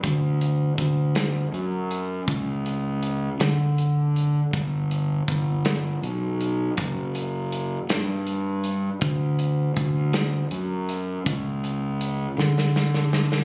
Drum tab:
HH |x-x-x-x-x-x-|x-x-x-x-x-x-|x-x-x-x-x-x-|x-x-x-x-x-x-|
SD |------o-----|------o-----|------o-----|------o-----|
BD |o---o-------|o-----------|o---o-------|o-----------|

HH |x-x-x-x-x-x-|x-x-x-------|
SD |------o-----|------oooooo|
BD |o---o-------|o-----------|